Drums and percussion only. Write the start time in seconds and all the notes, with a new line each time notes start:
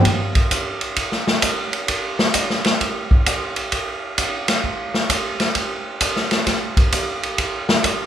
0.05 kick, ride
0.35 kick, ride
0.51 kick, hi-hat pedal, ride
0.81 ride
0.96 kick, ride
1.12 snare
1.27 snare
1.42 kick, hi-hat pedal, ride
1.73 ride
1.88 kick, ride
2.19 snare
2.34 kick, hi-hat pedal, ride
2.50 snare
2.65 snare, ride
2.81 kick, ride
3.11 kick
3.26 kick, hi-hat pedal, ride
3.56 ride
3.72 kick, ride
4.18 kick, hi-hat pedal, ride
4.48 snare, ride
4.64 kick
4.94 snare
5.10 kick, hi-hat pedal, ride
5.40 snare, ride
5.55 kick, ride
6.01 kick, hi-hat pedal, ride
6.16 snare
6.31 snare, ride
6.47 kick, snare, ride
6.77 kick, ride
6.92 kick, hi-hat pedal, ride
7.23 ride
7.38 kick, ride
7.69 snare
7.84 kick, hi-hat pedal, ride